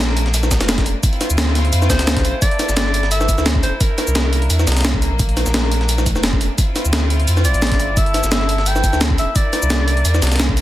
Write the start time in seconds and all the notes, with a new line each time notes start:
Already playing: A#1 A3 A#3 D4
0.09 snare
0.17 closed hi-hat
0.26 snare
0.34 closed hi-hat, cabasa
0.43 snare, cabasa
0.51 kick, snare, closed hi-hat, cabasa
0.61 F1, snare, closed hi-hat, cabasa
0.69 snare, closed hi-hat, cabasa
0.78 kick, snare, closed hi-hat
0.86 F1, closed hi-hat, cabasa
1.03 C4 E4 F4, kick, closed hi-hat, cabasa
1.13 closed hi-hat
1.21 snare, closed hi-hat, cabasa
1.30 D2, closed hi-hat, cabasa
1.38 snare, closed hi-hat, cabasa
1.47 snare
1.55 snare, closed hi-hat
1.65 closed hi-hat
1.73 F2, closed hi-hat, cabasa
1.82 snare, cabasa
1.90 C2 C5, kick, snare, closed hi-hat, cabasa
1.99 D2, snare, closed hi-hat, cabasa
2.07 snare, closed hi-hat, cabasa
2.17 kick, snare, closed hi-hat
2.25 A1, closed hi-hat, cabasa
2.42 A#3 A4 D5, kick, closed hi-hat, cabasa
2.51 closed hi-hat
2.59 snare, closed hi-hat, cabasa
2.69 G1, snare, cabasa
2.77 D5, snare, closed hi-hat, cabasa
2.86 snare
2.94 closed hi-hat
3.03 snare
3.11 E5, closed hi-hat, cabasa
3.21 snare, cabasa
3.28 kick, closed hi-hat, cabasa
3.38 D2, snare, cabasa
3.46 snare, closed hi-hat, cabasa
3.55 kick
3.63 D1 C5, closed hi-hat, cabasa
3.80 A#3 D4 A#4, kick, closed hi-hat, cabasa
3.98 snare, closed hi-hat, cabasa
4.07 C2, cabasa
4.15 snare, closed hi-hat, cabasa
4.33 closed hi-hat
4.42 closed hi-hat
4.50 E2, closed hi-hat, cabasa
4.59 snare, cabasa
4.67 C2, snare, closed hi-hat, cabasa
4.72 snare, closed hi-hat
4.77 snare, closed hi-hat, cabasa
4.81 snare, closed hi-hat
4.85 snare, closed hi-hat, cabasa
4.94 kick
5.02 closed hi-hat, cabasa
5.12 A#1
5.19 A3 D4, kick, closed hi-hat, cabasa
5.29 closed hi-hat
5.37 snare, closed hi-hat, cabasa
5.46 A#1, snare, cabasa
5.54 snare, closed hi-hat, cabasa
5.64 snare
5.71 closed hi-hat
5.81 snare
5.89 closed hi-hat, cabasa
5.98 snare, cabasa
6.06 kick, closed hi-hat, cabasa
6.16 F1, snare, cabasa
6.23 snare, closed hi-hat, cabasa
6.33 kick
6.41 F1, closed hi-hat, cabasa
6.58 C4 E4 F4, kick, closed hi-hat, cabasa
6.76 snare, closed hi-hat, cabasa
6.85 D2, cabasa
6.93 snare, closed hi-hat, cabasa
7.10 closed hi-hat
7.20 closed hi-hat
7.27 F2, closed hi-hat, cabasa
7.37 snare, cabasa
7.45 A1 D5, closed hi-hat, cabasa
7.54 A1, closed hi-hat, cabasa
7.62 snare, closed hi-hat, cabasa
7.67 snare, closed hi-hat
7.72 kick, snare, closed hi-hat
7.80 G1, closed hi-hat, cabasa
7.97 A#3 A4 E5, kick, closed hi-hat, cabasa
8.06 closed hi-hat
8.14 snare, closed hi-hat, cabasa
8.24 G1, snare, cabasa
8.32 E5, snare, closed hi-hat, cabasa
8.41 snare
8.49 closed hi-hat
8.58 snare
8.66 G5, closed hi-hat, cabasa
8.76 snare, cabasa
8.84 kick, closed hi-hat, cabasa
8.93 D2, snare, cabasa
9.01 snare, closed hi-hat, cabasa
9.10 kick
9.18 D1 E5, closed hi-hat, cabasa
9.35 A#3 D4 D5, kick, closed hi-hat, cabasa
9.53 snare, closed hi-hat, cabasa
9.62 C2, cabasa
9.70 snare, closed hi-hat, cabasa
9.88 closed hi-hat
9.97 closed hi-hat
10.05 E2, closed hi-hat, cabasa
10.14 snare, cabasa
10.22 C2, snare, closed hi-hat, cabasa
10.27 snare, closed hi-hat
10.32 snare, closed hi-hat, cabasa
10.36 snare, closed hi-hat
10.40 snare, closed hi-hat, cabasa
10.49 kick
10.57 closed hi-hat, cabasa